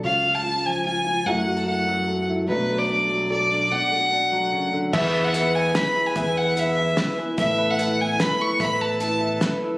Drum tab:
CC |------|------|------|------|
HH |------|------|------|------|
SD |------|------|------|------|
BD |------|------|------|------|

CC |x-----|------|------|------|
HH |--x-x-|x-x-x-|x-x-x-|x-x-x-|
SD |----o-|----o-|----o-|----o-|
BD |o-----|o-----|o-----|o-----|